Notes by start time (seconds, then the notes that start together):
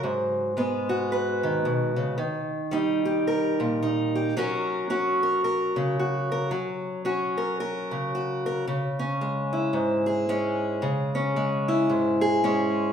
Already playing: F#3
0.03 G#2
0.57 G#3 B3
0.89 F#4
1.12 B4
1.43 D#3
1.65 B2
1.96 C#3
2.18 D#3
2.71 G3 D#4
3.05 G4
3.27 A#4
3.60 A#2
3.83 D#4
4.15 G4
4.37 F#3 C#4 F#4 A#4
4.90 C#4 F#4
5.23 A#4
5.44 A#4
5.76 C#3
5.99 F#4
6.32 A#4
6.51 F#3
7.05 C#4 F#4
7.38 A#4
7.60 A#4
7.91 C#3
8.15 F#4
8.46 A#4
8.67 C#3
8.99 C#4
9.21 G#3
9.53 E4
9.73 G#2
10.06 G#4
10.29 G#3 C#4
10.82 C#3
11.15 C#4
11.36 G#3
11.68 E4
11.89 G#2
12.21 G#4
12.44 G#3 C#4